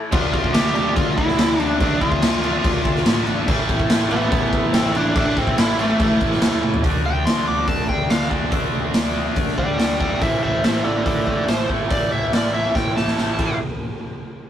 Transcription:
Already playing: overdriven electric guitar A2 E3 A3, tonewheel organ E4 A4 A5
0.12 picked electric bass D2, overdriven electric guitar D3 A3 D4, tonewheel organ F3 D5, lead electric guitar F4, kick, crash
0.33 picked electric bass D2, lead electric guitar F4, kick, crash
0.44 kick
0.54 picked electric bass D2, lead electric guitar G4, snare, crash
0.74 picked electric bass D2, overdriven electric guitar D3 A3 D4, crash
0.96 picked electric bass D2, lead electric guitar F4, kick, crash
1.18 picked electric bass D2, lead electric guitar E4, kick, crash
1.28 snare
1.38 picked electric bass D2, snare, crash
1.60 picked electric bass D2, lead electric guitar D4, crash
1.80 picked electric bass D2, overdriven electric guitar D3 A3 D4, lead electric guitar D4, kick, crash
2.01 picked electric bass D2, lead electric guitar F4, kick, crash
2.12 kick
2.22 picked electric bass D2, snare, crash
2.42 overdriven electric guitar D3 A3 D4, crash
2.64 picked electric bass D2, kick, crash
2.85 picked electric bass D2, kick, crash
2.96 snare
3.05 picked electric bass A2, snare, crash
3.26 picked electric bass G#1, crash
3.47 picked electric bass A1, overdriven electric guitar A2 E3 A3, tonewheel organ E4 A4, kick, crash
3.69 picked electric bass A1, kick, crash
3.80 kick
3.90 picked electric bass A1, snare, crash
4.09 picked electric bass A1, overdriven electric guitar A2 E3 A3, lead electric guitar B3, crash
4.32 picked electric bass A1, kick, crash
4.53 picked electric bass A1, kick, crash
4.73 picked electric bass A1, lead electric guitar C4, snare, crash
4.94 picked electric bass A1, lead electric guitar D4, crash
5.14 picked electric bass A1, overdriven electric guitar A2 E3 A3, lead electric guitar D4, kick, crash
5.37 picked electric bass A1, lead electric guitar C4, kick, crash
5.47 kick
5.57 picked electric bass A1, lead electric guitar E4, snare, crash
5.77 overdriven electric guitar A2 E3 A3, lead electric guitar A3, crash
6.00 picked electric bass A1, kick, crash
6.21 picked electric bass A1, kick, crash
6.32 snare
6.41 picked electric bass E2, snare, crash
6.63 picked electric bass A1, high tom
6.74 floor tom
6.82 picked electric bass D2, overdriven electric guitar D3 A3 D4, kick, open hi-hat
7.06 picked electric bass D2, lead electric guitar G5
7.25 picked electric bass D2, lead electric guitar C6, snare, open hi-hat
7.48 picked electric bass D2, lead electric guitar D6
7.67 picked electric bass D2, lead electric guitar A5, kick, open hi-hat
7.86 picked electric bass D2, overdriven electric guitar D3 A3 D4, lead electric guitar G5, kick
8.09 picked electric bass D2, overdriven electric guitar D3 A3 D4, lead electric guitar F5, snare, open hi-hat
8.29 picked electric bass D2, overdriven electric guitar D3 A3 D4, kick
8.51 picked electric bass D2, overdriven electric guitar D3 A3 D4, kick, open hi-hat
8.74 picked electric bass D2
8.94 picked electric bass D2, snare, open hi-hat
9.36 picked electric bass D2, kick, open hi-hat
9.47 snare
9.56 picked electric bass D2, overdriven electric guitar D3 A3 D4, lead electric guitar D5 G5, kick
9.78 picked electric bass D2, overdriven electric guitar D3 A3 D4, lead electric guitar D5 G5, snare, open hi-hat
9.99 overdriven electric guitar D3 A3 D4, lead electric guitar D5 G5, kick
10.21 picked electric bass A1, overdriven electric guitar A2 E3 A3, lead electric guitar C5 E5, kick, open hi-hat
10.43 picked electric bass A1, lead electric guitar C5 E5
10.64 picked electric bass A1, lead electric guitar C5 E5, snare, open hi-hat
10.84 picked electric bass A1, lead electric guitar A4 D5
11.06 picked electric bass A1, lead electric guitar A4 D5, kick, open hi-hat
11.26 picked electric bass A1, overdriven electric guitar A2 E3 A3, lead electric guitar A4 D5, kick
11.47 picked electric bass A1, overdriven electric guitar A2 E3 A3, lead electric guitar C5, snare, open hi-hat
11.68 picked electric bass A1, overdriven electric guitar A2 E3 A3, kick
11.89 picked electric bass A1, overdriven electric guitar A2 E3 A3, lead electric guitar D5, kick, open hi-hat
12.12 picked electric bass A1, lead electric guitar E5
12.33 picked electric bass A1, lead electric guitar D5, snare, open hi-hat
12.54 lead electric guitar E5
12.75 picked electric bass A1, lead electric guitar G5, kick, snare
12.95 picked electric bass A1, overdriven electric guitar A2 E3 A3, lead electric guitar A5, snare
13.08 snare
13.16 picked electric bass A1, overdriven electric guitar A2 E3 A3, snare
13.38 picked electric bass A1, overdriven electric guitar A2 E3 A3, kick, crash

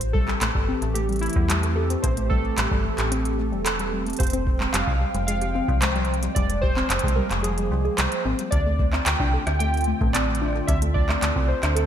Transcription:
Already playing: fm bass A1, analog synth pad E3 A3 C4 G4
0.01 closed hi-hat
0.13 synth arpeggio sound G3, synth keys A4, kick
0.28 synth arpeggio sound G3, clap
0.41 fm bass A1, synth arpeggio sound A3, clap, closed hi-hat
0.55 fm bass G1, synth arpeggio sound G4, kick
0.69 synth arpeggio sound C4
0.82 fm bass A1, closed hi-hat
0.94 synth arpeggio sound A3, synth keys G4, closed hi-hat
1.09 synth arpeggio sound G3, closed hi-hat
1.13 closed hi-hat
1.16 closed hi-hat
1.19 synth keys E4, closed hi-hat
1.23 closed hi-hat
1.26 closed hi-hat
1.30 closed hi-hat
1.33 fm bass E2, synth arpeggio sound G3, kick, closed hi-hat
1.50 synth arpeggio sound G3, clap, closed hi-hat
1.63 synth arpeggio sound A3, closed hi-hat
1.76 synth arpeggio sound G4, synth keys A4
1.90 synth arpeggio sound C4, closed hi-hat
2.02 fm bass A1, synth keys C5, kick, closed hi-hat
2.17 synth arpeggio sound A3, closed hi-hat
2.30 synth arpeggio sound G3, synth keys A4, kick
2.58 fm bass A1, synth arpeggio sound G3, clap, closed hi-hat
2.71 fm bass G1, synth arpeggio sound G3, kick
2.85 synth arpeggio sound A3
2.98 fm bass A1, synth arpeggio sound G4, clap, closed hi-hat
3.12 synth arpeggio sound C4, closed hi-hat
3.25 closed hi-hat
3.39 synth arpeggio sound A3
3.52 fm bass E1, synth arpeggio sound G3
3.65 synth keys A4, clap, closed hi-hat
3.79 synth arpeggio sound G3, closed hi-hat
3.93 synth arpeggio sound G3
4.06 synth arpeggio sound A3, closed hi-hat
4.10 closed hi-hat
4.13 closed hi-hat
4.17 fm bass F1, synth arpeggio sound G4, synth keys C5, kick, closed hi-hat
4.20 analog synth pad F3 G#3 G5, closed hi-hat
4.23 closed hi-hat
4.27 closed hi-hat
4.30 synth arpeggio sound C4, closed hi-hat
4.33 closed hi-hat
4.47 kick
4.60 synth arpeggio sound G#3, clap
4.73 fm bass F1, synth arpeggio sound G3, synth keys F5, clap, closed hi-hat
4.87 fm bass C2, kick
5.01 synth arpeggio sound G3
5.14 fm bass F1, synth arpeggio sound G3, closed hi-hat
5.27 synth arpeggio sound G#3, synth keys F5, closed hi-hat
5.41 synth arpeggio sound G4, closed hi-hat
5.55 synth arpeggio sound C4
5.68 fm bass C2, kick
5.81 synth arpeggio sound G#3, synth keys C5, clap, closed hi-hat
5.96 synth arpeggio sound G3, closed hi-hat
6.05 closed hi-hat
6.14 closed hi-hat
6.23 synth arpeggio sound G3, closed hi-hat
6.35 fm bass F1, synth arpeggio sound G3, analog synth pad A#3, synth keys D5, kick, closed hi-hat
6.50 synth arpeggio sound G#3, closed hi-hat
6.62 synth arpeggio sound G4, synth keys C5, kick
6.77 synth arpeggio sound C4, clap
6.90 fm bass F1, clap, closed hi-hat
6.99 closed hi-hat
7.04 fm bass C2, synth arpeggio sound G#3, kick
7.08 closed hi-hat
7.16 synth arpeggio sound G3, synth keys A#4
7.31 fm bass F1, clap, closed hi-hat
7.43 synth arpeggio sound G3, synth keys G#4, closed hi-hat
7.58 synth arpeggio sound G3, closed hi-hat
7.71 fm bass C2, synth arpeggio sound G3
7.85 synth arpeggio sound G#4
7.97 fm bass C2, synth arpeggio sound G3, synth keys C5, clap, closed hi-hat
8.12 closed hi-hat
8.25 fm bass G#1, synth arpeggio sound C4
8.39 synth arpeggio sound G3, closed hi-hat
8.51 fm bass D2, analog synth pad D3 A3 C4 F4, synth keys D5, kick, closed hi-hat
8.66 synth arpeggio sound A3
8.79 synth arpeggio sound A3, kick
8.93 synth arpeggio sound C4, cross-stick, clap
9.05 fm bass D2, synth keys G5, clap, closed hi-hat
9.20 fm bass C2, synth arpeggio sound D4, kick
9.33 synth arpeggio sound A4
9.47 fm bass D2, synth arpeggio sound C4, cross-stick, closed hi-hat
9.59 synth arpeggio sound A3, synth keys G5, closed hi-hat
9.74 closed hi-hat
9.77 closed hi-hat
9.81 closed hi-hat
9.84 synth arpeggio sound A3, closed hi-hat
10.01 fm bass A1, synth arpeggio sound A3, kick
10.13 synth arpeggio sound C4, synth keys D5, clap, closed hi-hat
10.35 closed hi-hat
10.42 synth arpeggio sound D4, cross-stick
10.44 cross-stick
10.46 cross-stick
10.48 cross-stick
10.51 cross-stick
10.53 synth arpeggio sound A4, cross-stick
10.67 fm bass D2, synth arpeggio sound C4, synth keys E5, kick, closed hi-hat
10.82 synth arpeggio sound A3, closed hi-hat
10.94 synth keys D5, kick
11.09 synth arpeggio sound A3, cross-stick, clap
11.23 fm bass D2, synth arpeggio sound A3, clap, closed hi-hat
11.36 fm bass C2, synth arpeggio sound C4, kick
11.48 synth keys C5
11.63 fm bass D2, synth arpeggio sound D4, cross-stick, clap, closed hi-hat
11.75 synth keys A4, synth arpeggio sound A4, closed hi-hat

